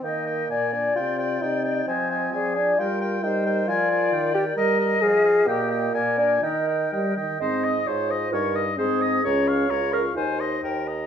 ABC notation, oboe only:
X:1
M:2/4
L:1/8
Q:1/4=131
K:Eb
V:1 name="Oboe"
g g a a | g g g g | a a a a | g g g g |
a a g g | e e f f | g g a a | g g g g |
[K:Ab] c e c e | d e c e | d f d f | c e B e |]